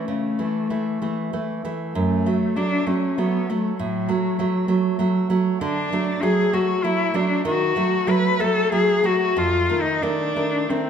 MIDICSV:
0, 0, Header, 1, 3, 480
1, 0, Start_track
1, 0, Tempo, 628272
1, 55, Time_signature, 3, 2, 24, 8
1, 1495, Tempo, 610998
1, 5815, Tempo, 635593
1, 7255, Tempo, 671141
1, 8353, End_track
2, 0, Start_track
2, 0, Title_t, "Cello"
2, 0, Program_c, 0, 42
2, 44, Note_on_c, 0, 57, 59
2, 1225, Note_off_c, 0, 57, 0
2, 1489, Note_on_c, 0, 57, 63
2, 1974, Note_on_c, 0, 62, 73
2, 1986, Note_off_c, 0, 57, 0
2, 2210, Note_on_c, 0, 61, 59
2, 2222, Note_off_c, 0, 62, 0
2, 2458, Note_on_c, 0, 59, 66
2, 2470, Note_off_c, 0, 61, 0
2, 2703, Note_on_c, 0, 57, 58
2, 2714, Note_off_c, 0, 59, 0
2, 2926, Note_off_c, 0, 57, 0
2, 2931, Note_on_c, 0, 54, 67
2, 4093, Note_off_c, 0, 54, 0
2, 4374, Note_on_c, 0, 62, 73
2, 4851, Note_on_c, 0, 68, 78
2, 4863, Note_off_c, 0, 62, 0
2, 5093, Note_on_c, 0, 66, 69
2, 5104, Note_off_c, 0, 68, 0
2, 5333, Note_on_c, 0, 64, 77
2, 5345, Note_off_c, 0, 66, 0
2, 5578, Note_on_c, 0, 62, 69
2, 5590, Note_off_c, 0, 64, 0
2, 5818, Note_off_c, 0, 62, 0
2, 5828, Note_on_c, 0, 66, 74
2, 6300, Note_on_c, 0, 71, 76
2, 6311, Note_off_c, 0, 66, 0
2, 6533, Note_on_c, 0, 69, 86
2, 6544, Note_off_c, 0, 71, 0
2, 6773, Note_off_c, 0, 69, 0
2, 6777, Note_on_c, 0, 68, 82
2, 7021, Note_on_c, 0, 66, 75
2, 7033, Note_off_c, 0, 68, 0
2, 7268, Note_on_c, 0, 65, 75
2, 7279, Note_off_c, 0, 66, 0
2, 7579, Note_on_c, 0, 63, 74
2, 7589, Note_off_c, 0, 65, 0
2, 7727, Note_on_c, 0, 62, 79
2, 7738, Note_off_c, 0, 63, 0
2, 8207, Note_on_c, 0, 60, 71
2, 8218, Note_off_c, 0, 62, 0
2, 8353, Note_off_c, 0, 60, 0
2, 8353, End_track
3, 0, Start_track
3, 0, Title_t, "Nylon-string guitar"
3, 0, Program_c, 1, 24
3, 61, Note_on_c, 1, 49, 49
3, 291, Note_off_c, 1, 49, 0
3, 297, Note_on_c, 1, 52, 35
3, 300, Note_on_c, 1, 57, 39
3, 512, Note_off_c, 1, 52, 0
3, 513, Note_off_c, 1, 57, 0
3, 537, Note_on_c, 1, 52, 36
3, 541, Note_on_c, 1, 57, 40
3, 751, Note_off_c, 1, 52, 0
3, 753, Note_off_c, 1, 57, 0
3, 777, Note_on_c, 1, 52, 39
3, 781, Note_on_c, 1, 57, 43
3, 992, Note_off_c, 1, 52, 0
3, 993, Note_off_c, 1, 57, 0
3, 1017, Note_on_c, 1, 52, 39
3, 1020, Note_on_c, 1, 57, 40
3, 1233, Note_off_c, 1, 52, 0
3, 1233, Note_off_c, 1, 57, 0
3, 1258, Note_on_c, 1, 52, 40
3, 1262, Note_on_c, 1, 57, 43
3, 1473, Note_off_c, 1, 52, 0
3, 1474, Note_off_c, 1, 57, 0
3, 1492, Note_on_c, 1, 42, 54
3, 1727, Note_off_c, 1, 42, 0
3, 1735, Note_on_c, 1, 54, 34
3, 1738, Note_on_c, 1, 57, 38
3, 1950, Note_off_c, 1, 54, 0
3, 1951, Note_off_c, 1, 57, 0
3, 1972, Note_on_c, 1, 54, 38
3, 1977, Note_on_c, 1, 57, 43
3, 2190, Note_off_c, 1, 54, 0
3, 2193, Note_off_c, 1, 57, 0
3, 2210, Note_on_c, 1, 54, 37
3, 2211, Note_on_c, 1, 57, 42
3, 2433, Note_off_c, 1, 54, 0
3, 2434, Note_off_c, 1, 57, 0
3, 2455, Note_on_c, 1, 54, 40
3, 2460, Note_on_c, 1, 57, 44
3, 2677, Note_off_c, 1, 54, 0
3, 2679, Note_off_c, 1, 57, 0
3, 2705, Note_on_c, 1, 54, 40
3, 2709, Note_on_c, 1, 57, 46
3, 2918, Note_off_c, 1, 54, 0
3, 2920, Note_off_c, 1, 57, 0
3, 2939, Note_on_c, 1, 45, 59
3, 3167, Note_off_c, 1, 45, 0
3, 3168, Note_on_c, 1, 54, 43
3, 3174, Note_on_c, 1, 57, 42
3, 3382, Note_off_c, 1, 54, 0
3, 3385, Note_off_c, 1, 57, 0
3, 3407, Note_on_c, 1, 54, 42
3, 3412, Note_on_c, 1, 57, 47
3, 3621, Note_off_c, 1, 54, 0
3, 3621, Note_off_c, 1, 57, 0
3, 3636, Note_on_c, 1, 54, 43
3, 3640, Note_on_c, 1, 57, 47
3, 3854, Note_off_c, 1, 54, 0
3, 3856, Note_off_c, 1, 57, 0
3, 3877, Note_on_c, 1, 54, 46
3, 3884, Note_on_c, 1, 57, 46
3, 4096, Note_off_c, 1, 54, 0
3, 4098, Note_off_c, 1, 57, 0
3, 4120, Note_on_c, 1, 54, 49
3, 4124, Note_on_c, 1, 57, 50
3, 4338, Note_off_c, 1, 54, 0
3, 4339, Note_off_c, 1, 57, 0
3, 4366, Note_on_c, 1, 50, 62
3, 4601, Note_off_c, 1, 50, 0
3, 4612, Note_on_c, 1, 54, 42
3, 4617, Note_on_c, 1, 57, 51
3, 4831, Note_off_c, 1, 54, 0
3, 4832, Note_off_c, 1, 57, 0
3, 4849, Note_on_c, 1, 54, 50
3, 4853, Note_on_c, 1, 57, 51
3, 5069, Note_off_c, 1, 54, 0
3, 5070, Note_off_c, 1, 57, 0
3, 5091, Note_on_c, 1, 54, 44
3, 5097, Note_on_c, 1, 57, 52
3, 5308, Note_off_c, 1, 54, 0
3, 5311, Note_off_c, 1, 57, 0
3, 5333, Note_on_c, 1, 54, 51
3, 5338, Note_on_c, 1, 57, 50
3, 5549, Note_off_c, 1, 54, 0
3, 5552, Note_off_c, 1, 57, 0
3, 5568, Note_on_c, 1, 54, 49
3, 5573, Note_on_c, 1, 57, 54
3, 5789, Note_off_c, 1, 54, 0
3, 5791, Note_off_c, 1, 57, 0
3, 5810, Note_on_c, 1, 51, 67
3, 6041, Note_off_c, 1, 51, 0
3, 6044, Note_on_c, 1, 54, 47
3, 6051, Note_on_c, 1, 57, 49
3, 6262, Note_off_c, 1, 54, 0
3, 6264, Note_off_c, 1, 57, 0
3, 6281, Note_on_c, 1, 54, 49
3, 6286, Note_on_c, 1, 57, 59
3, 6501, Note_off_c, 1, 54, 0
3, 6504, Note_off_c, 1, 57, 0
3, 6527, Note_on_c, 1, 54, 47
3, 6531, Note_on_c, 1, 57, 56
3, 6746, Note_off_c, 1, 54, 0
3, 6748, Note_off_c, 1, 57, 0
3, 6769, Note_on_c, 1, 54, 50
3, 6773, Note_on_c, 1, 57, 48
3, 6988, Note_off_c, 1, 54, 0
3, 6990, Note_off_c, 1, 57, 0
3, 7008, Note_on_c, 1, 54, 50
3, 7012, Note_on_c, 1, 57, 57
3, 7229, Note_off_c, 1, 54, 0
3, 7231, Note_off_c, 1, 57, 0
3, 7257, Note_on_c, 1, 41, 64
3, 7482, Note_off_c, 1, 41, 0
3, 7492, Note_on_c, 1, 51, 44
3, 7496, Note_on_c, 1, 57, 46
3, 7702, Note_off_c, 1, 51, 0
3, 7704, Note_off_c, 1, 57, 0
3, 7731, Note_on_c, 1, 51, 46
3, 7734, Note_on_c, 1, 57, 50
3, 7942, Note_off_c, 1, 51, 0
3, 7943, Note_off_c, 1, 57, 0
3, 7971, Note_on_c, 1, 51, 42
3, 7974, Note_on_c, 1, 57, 49
3, 8188, Note_off_c, 1, 51, 0
3, 8189, Note_off_c, 1, 57, 0
3, 8211, Note_on_c, 1, 51, 42
3, 8214, Note_on_c, 1, 57, 48
3, 8353, Note_off_c, 1, 51, 0
3, 8353, Note_off_c, 1, 57, 0
3, 8353, End_track
0, 0, End_of_file